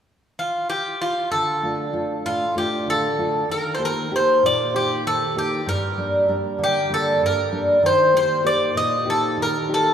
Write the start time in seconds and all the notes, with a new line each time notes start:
0.39 F4
0.70 G4
1.02 F4
1.31 D3 A4
1.63 A3 D4 F4
1.93 A3 D4 F4
2.25 A2 F4
2.55 A3 D4 F4 G4
2.87 D3 A4
3.18 A3 D4 F4
3.49 D#3 A#4
3.75 C5
3.79 A#3 D#4 G4
3.85 A#4
4.11 A#3 D#4 G4
4.16 C5
4.43 A#2 D5
4.74 A#3 D#4 G4
5.05 D#3 A4
5.35 A#3 D#4 G4
5.66 G2 A#4
5.97 G3 A#3 D4
6.28 G3 A#3 D4
6.58 D3
6.64 G4
6.89 G3 A#3 D4
6.94 A4
7.21 G2
7.26 A#4
7.52 G3 A#3 D4
7.83 D#3 C5
8.13 A#3 D#4 G4 C5
8.44 A#3 D#4 G4 D5
8.75 A#2 D#5
9.05 A#3 D#4 G4
9.10 A4
9.37 D#3
9.42 A#4
9.68 A#3 D#4 G4
9.74 A4